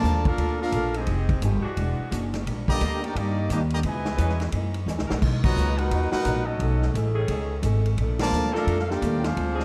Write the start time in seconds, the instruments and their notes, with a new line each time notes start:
Already playing: trombone section D3 F3 A#3, trumpet section F4 A#4 D5 A5
0.03 upright bass D#2, steel-string acoustic guitar A#2 A3 D4 F4, hi-hat pedal
0.25 trombone section A#3 D4 F4, trumpet section D4 A4 A#4 F5, kick, ride
0.38 upright bass D2, steel-string acoustic guitar A#2 A3 D4 F4, kick, ride
0.62 trombone section A#3 D4 F4, trumpet section D4 A4 A#4 F5
0.72 upright bass A#1, steel-string acoustic guitar A#2 A3 D4 F4, saxophone section F3 A#3 D4 A4, kick, hi-hat pedal, ride
0.94 trombone section G#3 C4 D#4, trumpet section C4 G4 G#4 D#5, ride
1.06 upright bass F1, steel-string acoustic guitar F3 G#3, kick, ride
1.11 steel-string acoustic guitar D#4 G4
1.29 kick, ride
1.42 upright bass G1, steel-string acoustic guitar F3 G#3 D#4 G4, kick, hi-hat pedal, ride
1.62 saxophone section E3 G#3 D4 F#4, muted upright bass stroke
1.77 upright bass E1, steel-string acoustic guitar E3 G#3 D4 F#4, kick, ride
1.99 muted upright bass stroke
2.09 upright bass F#1, saxophone section E3 G#3 D4 F#4, steel-string acoustic guitar E3 G#3 D4, kick, hi-hat pedal, ride
2.14 steel-string acoustic guitar F#4
2.34 snare, ride
2.46 upright bass A#1, steel-string acoustic guitar D#3 G3 A#3, kick, ride
2.50 steel-string acoustic guitar D4
2.68 trombone section D3 G3 A#3, trumpet section G4 D5 D#5 A#5, kick
2.80 upright bass D2, steel-string acoustic guitar D#3 G3 A#3 D4, saxophone section D#3 A#3 D4 G4, kick, hi-hat pedal, ride
3.04 trombone section A#3 D4 G4, trumpet section D#4 A#4 D5 G5, ride
3.15 upright bass G2, steel-string acoustic guitar D#3 G3 A#3, trombone section G3 A#3 D#4, trumpet section A#3 G4 D5 D#5, kick, ride
3.19 steel-string acoustic guitar D4
3.49 upright bass D#2, steel-string acoustic guitar D#3 G3 A#3 D4, trombone section G3 A#3 D#4, trumpet section A#3 D4 G4 D#5, kick, hi-hat pedal, ride
3.70 trombone section D3 A#3, trumpet section D5 D#5 A#5, ride
3.74 trombone section G3, trumpet section G4
3.83 upright bass C#2, trombone section B2 E3, steel-string acoustic guitar C#3 E3 B3 D#4, trumpet section E4 B4 D#5 G#5, kick, ride
3.87 trombone section G#3
4.05 snare
4.16 upright bass E2, steel-string acoustic guitar C#3 E3, saxophone section E3 C#4 D#4 B4, kick, hi-hat pedal, ride
4.21 steel-string acoustic guitar B3 D#4
4.29 snare
4.40 snare, ride
4.52 upright bass F#2, steel-string acoustic guitar F#2 E3 A#3, kick, ride
4.56 steel-string acoustic guitar D#4
4.74 ride
4.86 upright bass E2, steel-string acoustic guitar F#2 E3 A#3 D#4, snare, hi-hat pedal
4.98 upright bass C#2, snare
5.08 upright bass A#1, saxophone section F#3 B3 D#4 A#4, snare
5.22 upright bass B1, steel-string acoustic guitar B2 F#3 A#3 D#4, kick, crash
5.44 trombone section A#2 D#3 F#3, trumpet section F#4 B4 D#5 A#5, kick, crash
5.56 upright bass C#2, steel-string acoustic guitar B2 F#3 A#3 D#4, hi-hat pedal
5.77 trombone section A#2 D#4 F#4, trumpet section D#4 A#4 B4 F#5, ride
5.91 upright bass D#2, steel-string acoustic guitar B2 F#3 A#3 D#4, kick, ride
6.11 trombone section A#2 D#4 F#4, trumpet section D#4 A#4 B4 F#5, muted upright bass stroke, snare
6.25 upright bass A#1, steel-string acoustic guitar B2 F#3 A#3 D#4, saxophone section F#3 B3 D#4 A#4, kick, hi-hat pedal, ride
6.46 trombone section F#3 A3 D#4, trumpet section C#4 F#4 A4 D#5
6.59 upright bass B1, steel-string acoustic guitar B2 A3 D#4 G#4, kick, ride
6.82 snare
6.94 upright bass A1, steel-string acoustic guitar B2 A3 D#4 G#4, kick, hi-hat pedal, ride
7.15 saxophone section D#3 A3 C#4 G#4
7.28 upright bass C#2, steel-string acoustic guitar B2 A3 D#4 G#4, kick, ride
7.62 upright bass G#1, steel-string acoustic guitar B2 A3 D#4 G#4, kick, hi-hat pedal, ride
7.85 ride
7.97 upright bass A#1, steel-string acoustic guitar A#2 F3 A3 D4, kick, ride
8.19 trombone section D3 F3 A#3, trumpet section F4 A#4 D5 A5, snare, ride
8.31 upright bass D2, steel-string acoustic guitar A#2 F3 A3, hi-hat pedal
8.35 steel-string acoustic guitar D4
8.52 saxophone section F3 A#3 D4 A4, trombone section A3 D4 F4, trumpet section D4 A4 A#4 F5, snare
8.67 upright bass F2, steel-string acoustic guitar A#2 F3 A3 D4, kick, ride
8.79 trumpet section F5, snare
8.89 trombone section A#3 D4 G4, trumpet section F4 A#4 D5 G5, snare
9.01 upright bass D#2, steel-string acoustic guitar A#2 F3 A3 D4, kick, hi-hat pedal, ride
9.23 trombone section G#3 C4 F4, trumpet section D4 G#4 C5 F5, snare, ride
9.36 upright bass D2, steel-string acoustic guitar D3 G#3 C4 F4, kick, ride
9.55 saxophone section F3 C4 D4 G#4
9.60 snare